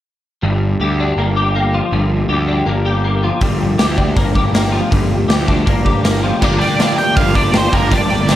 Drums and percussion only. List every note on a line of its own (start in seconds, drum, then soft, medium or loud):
3.41 kick loud
3.41 open hi-hat soft
3.79 snare loud
3.79 open hi-hat soft
3.98 kick medium
4.16 kick loud
4.16 open hi-hat soft
4.35 kick medium
4.55 snare loud
4.55 open hi-hat medium
4.92 kick medium
4.92 open hi-hat soft
5.30 snare loud
5.30 open hi-hat soft
5.48 kick medium
5.67 kick loud
5.67 open hi-hat soft
5.86 kick medium
6.05 snare loud
6.05 open hi-hat soft
6.42 kick loud
6.42 crash medium
6.61 open hi-hat soft
6.80 snare loud
6.80 open hi-hat medium
6.98 open hi-hat soft
7.17 kick loud
7.17 open hi-hat medium
7.35 kick medium
7.35 open hi-hat medium
7.53 snare loud
7.53 open hi-hat medium
7.73 kick medium
7.73 open hi-hat soft
7.92 kick loud
7.92 open hi-hat medium
8.10 open hi-hat soft
8.28 snare loud
8.28 open hi-hat medium